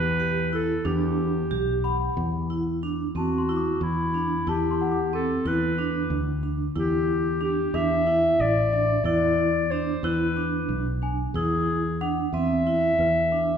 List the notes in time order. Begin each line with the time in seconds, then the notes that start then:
Already playing: E2 B4
0.20 G4
0.53 E4 A4
0.85 E2 D4 G4
1.51 B1 G4
1.84 F#5 B5
2.17 E2
2.50 E4
2.83 D4
3.15 E2 C4 F#4 A5
3.38 C6
3.49 E4
3.56 D6
3.81 E2 E4
4.14 D4
4.47 E2 E4 G4 A5
4.71 C6
4.81 F#5
4.92 D6
5.13 C4 A4
5.45 E2 E4 B4
5.78 D4
6.10 D2
6.43 D4
6.76 E2 E4 G4
7.41 D4 G4
7.74 E2 D4 E5
8.07 E4
8.39 A1 D5
8.73 D4 E5
9.04 E2 E4 D5
9.71 D4 C5
10.03 E2 E4 B4
10.37 D4
10.69 B1
11.02 D4 G#5
11.34 E2 E4 G#4
12.01 D4 F#5
12.33 E2 C4 E5
12.67 E4
12.99 E2 B4
13.32 D4